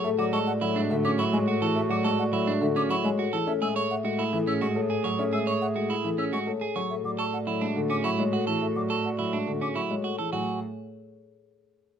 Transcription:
<<
  \new Staff \with { instrumentName = "Flute" } { \time 3/4 \key a \major \tempo 4 = 105 e''16 d'''16 cis'''16 fis''16 r8 e''16 d'''16 cis'''16 gis''16 r8 | e''16 d'''16 cis'''16 fis''16 r8 e''16 d'''16 cis'''16 gis''16 r8 | e''16 e'''16 cis'''16 fis''16 r8 e''16 e'''16 cis'''16 r8. | e''16 e'''16 cis'''16 fis''16 r8 e''16 e'''16 cis'''16 r8. |
e''16 d'''16 cis'''16 fis''16 r8. d'''16 cis'''16 r8. | e''16 d'''16 cis'''16 fis''16 r8. d'''16 cis'''16 r8. | gis''8 r2 r8 | }
  \new Staff \with { instrumentName = "Marimba" } { \time 3/4 \key a \major a'16 d''16 a'16 d''16 a'16 e''16 a'16 gis'16 fis''16 cis''16 a'16 gis'16 | a'16 d''16 a'16 d''16 a'16 e''16 a'16 gis'16 fis''16 cis''16 a'16 gis'16 | a'16 e''16 a'16 e''16 a'16 fis''16 a'16 gis'16 gis''16 cis''16 a'16 r16 | a'16 e''16 a'16 e''16 a'16 fis''16 a'16 gis'16 gis''16 cis''16 a'16 gis'16 |
a'16 d''16 r16 d''16 a'16 e''16 a'16 gis'16 fis''16 cis''16 a'16 r16 | a'16 d''16 a'16 d''16 a'16 e''16 a'16 gis'16 fis''16 cis''16 a'16 gis'16 | cis''8 r2 r8 | }
  \new Staff \with { instrumentName = "Clarinet" } { \time 3/4 \key a \major fis'2.~ | fis'2~ fis'8. r16 | gis'2.~ | gis'2~ gis'8. r16 |
fis'2.~ | fis'2~ fis'8. r16 | r2. | }
  \new Staff \with { instrumentName = "Clean electric guitar" } { \time 3/4 \key a \major r16 fis'16 a'16 r16 e'16 d'16 r16 cis'16 e'16 r16 fis'16 a'16 | r16 fis'16 a'16 r16 e'16 d'16 r16 cis'16 e'16 r16 fis'16 a'16 | r16 gis'16 cis''16 r16 fis'16 e'16 r16 cis'16 fis'16 r16 gis'16 cis''16 | r16 gis'16 cis''16 r16 fis'16 e'16 r16 cis'16 fis'16 r16 gis'16 cis''16 |
r8 a'16 r16 e'16 d'16 r16 cis'16 e'16 r16 fis'16 a'16 | r8 a'16 r16 e'16 d'16 r16 cis'16 e'16 r16 fis'16 a'16 | fis'8 r2 r8 | }
  \new Staff \with { instrumentName = "Grand piano" } { \clef bass \time 3/4 \key a \major a16 fis16 gis16 r16 fis16 gis16 d16 r16 fis16 gis16 r16 e16 | a16 fis16 gis16 r16 fis16 gis16 d16 r16 fis16 gis16 r16 e16 | cis'16 gis16 r8 gis16 a16 e16 r16 gis16 a16 r16 fis16 | cis'16 gis16 r8 gis16 a16 e16 r16 gis16 a16 r16 fis16 |
r16 fis16 r8 fis16 gis16 d16 r16 fis16 gis16 r16 e16 | r16 fis16 r8 fis16 gis16 d16 r16 fis16 gis16 r16 e16 | fis8 r2 r8 | }
  \new Staff \with { instrumentName = "Cello" } { \clef bass \time 3/4 \key a \major a,2.~ | a,2. | a,2.~ | a,2. |
a,2.~ | a,2. | a,8 r2 r8 | }
>>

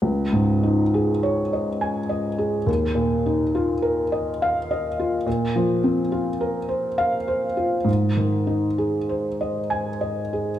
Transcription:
\new Staff \with { instrumentName = "Felt piano" } { \time 3/4 \key des \major \tempo 4 = 68 << { r2 aes''8 r8 | r2 f''8 r8 | r2 f''8 r8 | r2 aes''8 r8 | } \\ { \tuplet 3/2 { des,8 aes,8 ees'8 aes'8 des''8 ees''8~ ees''8 ees''8 aes'8 } | \tuplet 3/2 { ees,8 bes,8 ees'8 f'8 bes'8 ees''8~ ees''8 ees''8 f'8 } | \tuplet 3/2 { bes,8 f8 c'8 f'8 bes'8 c''8~ c''8 c''8 f'8 } | \tuplet 3/2 { aes,8 ees8 ees'8 aes'8 c''8 ees''8~ ees''8 ees''8 aes'8 } | } >> }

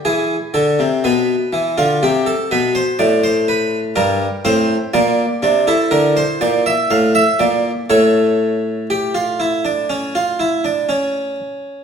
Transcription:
<<
  \new Staff \with { instrumentName = "Harpsichord" } { \time 4/4 \key a \phrygian \tempo 4 = 61 << { gis'8 a'8 b'8. f'16 g'16 a'16 b'16 c''16 d''16 c''16 b'8 | bes'8 c''8 d''8. a'16 bes'16 c''16 d''16 e''16 f''16 e''16 d''8 | cis''2.~ cis''8 r8 | } \\ { r1 | d'8 c'8 bes8 d'16 e'2~ e'16 | a'4 g'16 f'16 e'16 d'16 cis'16 f'16 e'16 d'16 cis'4 | } >> }
  \new Staff \with { instrumentName = "Harpsichord" } { \clef bass \time 4/4 \key a \phrygian e8 d16 c16 b,8 e16 d16 c8 b,8 a,4 | g,8 a,8 bes,8 c8 d8 bes,8 a,8 bes,8 | a,2.~ a,8 r8 | }
>>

